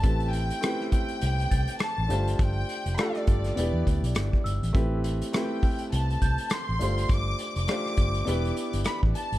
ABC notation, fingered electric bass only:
X:1
M:4/4
L:1/16
Q:"Swing 16ths" 1/4=102
K:Am
V:1 name="Fingered electric bass" clef=bass
A,,,4 z4 C,,2 C,, z2 A,,, G,,,2 | G,,,2 z F,,, z2 G,,,2 E,,, E,, D,, B,,, G,,, z G,,, A,,, | z8 C,,2 C,, z2 A,,, G,,,2 | G,,,2 z F,,, z2 G,,,2 E,,,2 z G,,, z A,,, z ^G,,, |]